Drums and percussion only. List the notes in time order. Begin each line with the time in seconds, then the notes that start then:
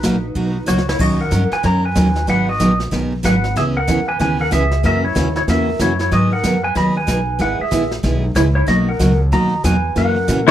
0.04 snare, hi-hat pedal
0.35 brush sweep, kick
0.68 snare, hi-hat pedal
0.78 snare
0.89 snare
1.00 brush sweep, kick, snare, crash
1.32 kick, snare, hi-hat pedal
1.52 snare
1.64 brush sweep, kick, snare
1.96 kick, snare, hi-hat pedal
2.16 snare
2.28 brush sweep, kick, snare
2.60 kick, snare, hi-hat pedal
2.80 snare
2.92 brush sweep, kick, snare
3.24 kick, snare, hi-hat pedal
3.44 snare
3.56 brush sweep, kick, snare
3.88 kick, snare, hi-hat pedal
4.20 brush sweep, kick, snare
4.52 kick, snare, hi-hat pedal
4.71 snare
4.84 brush sweep, kick, snare
5.16 kick, snare, hi-hat pedal
5.36 snare
5.48 brush sweep, kick, snare
5.80 kick, snare, hi-hat pedal
5.99 snare
6.12 brush sweep, kick, snare
6.43 kick, snare, hi-hat pedal
6.76 brush sweep, kick, snare
7.08 kick, snare, hi-hat pedal
7.40 brush sweep, kick, snare
7.72 kick, snare, hi-hat pedal
7.91 snare
8.04 brush sweep, kick, snare
8.36 kick, snare, hi-hat pedal
8.68 brush sweep, kick, snare
9.00 kick, snare, hi-hat pedal
9.32 brush sweep, kick, snare
9.64 kick, snare, hi-hat pedal
9.96 brush sweep, kick, snare
10.28 kick, snare, hi-hat pedal